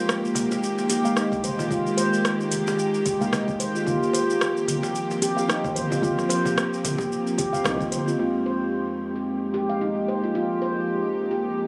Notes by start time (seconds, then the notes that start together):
Already playing: D#3 G#3 A#3 D#4 G4 C5
0.09 cross-stick, shaker
0.25 shaker
0.35 F1, cajon bass, closed hi-hat, shaker
0.51 G4, cajon slap, shaker
0.63 shaker
0.78 cajon slap, shaker
0.89 G4, closed hi-hat, shaker
1.03 G#3 A#3 D#4 F5, shaker
1.07 G4
1.16 D#4, cross-stick, shaker
1.32 C2, kick, cajon slap, shaker
1.43 F1 C5, closed hi-hat, shaker
1.59 F4, cajon bass, shaker
1.69 F1 G#3 A#3 D#4 F4, kick, shaker
1.73 G4
1.87 shaker
1.97 C5, cajon slap, closed hi-hat, shaker
2.14 shaker
2.25 cross-stick, shaker
2.40 shaker
2.52 F1, closed hi-hat, shaker
2.67 G4, cajon slap, shaker
2.79 shaker
2.94 shaker
3.06 G4, kick, closed hi-hat, shaker
3.19 G#3 A#3 D#4 F5, kick, shaker
3.23 G4
3.33 D#4, cajon bass, cross-stick, shaker
3.48 kick, shaker
3.60 C5, closed hi-hat, shaker
3.75 F4, shaker
3.85 G1 F3 A#3 C4 F4, kick, shaker
3.89 G4
4.03 shaker
4.13 C5, cajon slap, closed hi-hat, shaker
4.30 shaker
4.41 cross-stick, shaker
4.57 shaker
4.67 G1, cajon bass, closed hi-hat, shaker
4.83 G4, cajon slap, shaker
4.95 shaker
5.11 cajon slap, shaker
5.22 G4, closed hi-hat, shaker
5.35 A#3 F4 G4 F5, shaker
5.48 D#4, cross-stick, shaker
5.64 D#2, kick, cajon slap, shaker
5.76 G1 C5, closed hi-hat, shaker
5.91 F4, cajon bass, shaker
6.00 G1 A#3 F4, kick, shaker
6.05 G4
6.19 cross-stick, shaker
6.29 C5, cajon slap, closed hi-hat, shaker
6.45 cajon bass, cajon slap, shaker
6.58 cross-stick, shaker
6.73 shaker
6.84 G1, cajon bass, closed hi-hat, shaker
6.98 G4, kick, cajon slap, shaker
7.12 shaker
7.27 shaker
7.38 G4, kick, closed hi-hat, shaker
7.53 F5, kick, shaker
7.63 C2 A#3 D#4 F4 G4, cajon bass, cross-stick, shaker
7.80 kick, shaker
7.92 G1 C5, closed hi-hat, shaker
8.08 F4, shaker
8.17 F2 F3 G#3 A#3 C4 D#4 F4 G4
8.21 G4
8.46 C5
9.16 G4
9.54 G4
9.69 F5
9.81 D#4
10.08 C5
10.24 F4
10.35 F4
10.62 C5
11.31 G4